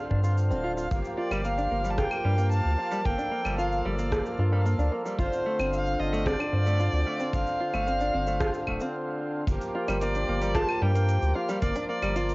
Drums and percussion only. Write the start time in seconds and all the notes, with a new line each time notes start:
0.11 kick
0.24 shaker
0.37 shaker
0.51 shaker
0.78 shaker
0.91 kick, shaker
1.05 shaker
1.31 claves, shaker
1.45 shaker
1.58 shaker
1.85 shaker
1.98 kick, cross-stick, shaker
2.11 claves, shaker
2.38 shaker
2.51 shaker
2.92 shaker
3.05 kick, shaker
3.19 shaker
3.45 claves, shaker
3.59 shaker
3.72 shaker
3.99 shaker
4.12 kick, cross-stick, shaker
4.26 shaker
4.66 shaker
4.79 shaker
5.06 shaker
5.19 kick, shaker
5.33 shaker
5.59 claves, shaker
5.73 shaker
5.86 shaker
6.13 shaker
6.26 kick, cross-stick, shaker
6.40 claves, shaker
6.66 shaker
6.80 shaker
6.93 shaker
7.20 shaker
7.33 kick, shaker
7.47 shaker
7.74 claves, shaker
7.87 shaker
8.00 shaker
8.27 shaker
8.41 kick, cross-stick, shaker
8.54 shaker
8.67 kick, claves
8.81 shaker
9.47 kick, open hi-hat, shaker
9.61 open hi-hat, shaker
9.88 open hi-hat, claves, shaker
10.01 open hi-hat, shaker
10.15 open hi-hat, shaker
10.42 open hi-hat, shaker
10.55 kick, cross-stick, open hi-hat, shaker
10.69 claves, shaker
10.96 open hi-hat, shaker
11.09 open hi-hat, shaker
11.22 shaker
11.49 open hi-hat, shaker
11.62 kick, open hi-hat, shaker
11.76 open hi-hat, shaker
12.03 open hi-hat, claves, shaker
12.16 open hi-hat, shaker
12.29 open hi-hat, shaker